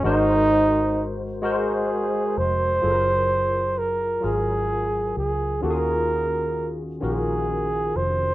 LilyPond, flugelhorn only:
\new Staff \with { instrumentName = "Flugelhorn" } { \time 6/8 \key ges \lydian \tempo 4. = 43 ees'4 r8 aes'4 c''8~ | c''4 bes'8 aes'4 aes'8 | bes'4 r8 aes'4 c''8 | }